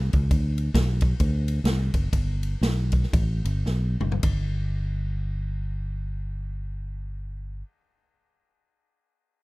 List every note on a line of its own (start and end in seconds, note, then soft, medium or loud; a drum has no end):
0.13 0.28 C#2 medium
0.13 kick loud
0.13 ride medium
0.31 0.69 D2 medium
0.31 kick loud
0.31 ride medium
0.58 ride medium
0.74 1.13 B1 loud
0.74 kick medium
0.74 snare loud
0.74 ride medium
1.01 kick loud
1.01 ride medium
1.20 1.59 D2 loud
1.20 kick loud
1.20 ride medium
1.48 ride medium
1.64 1.89 C2 loud
1.64 snare loud
1.64 ride medium
1.94 2.10 F#1 medium
1.94 kick medium
1.94 ride medium
2.13 2.54 G1 medium
2.13 kick medium
2.13 ride medium
2.43 ride medium
2.61 3.05 B1 medium
2.61 snare loud
2.61 ride medium
2.92 kick medium
2.92 ride medium
3.03 snare soft
3.13 3.40 A1 medium
3.13 kick loud
3.13 ride medium
3.45 3.63 G1 loud
3.45 ride medium
3.66 3.95 B1 medium
3.66 snare medium
4.00 4.20 F#1 medium
4.00 mid tom medium
4.12 floor tom loud
4.23 7.62 G1 medium
4.23 kick loud
4.23 ride bell medium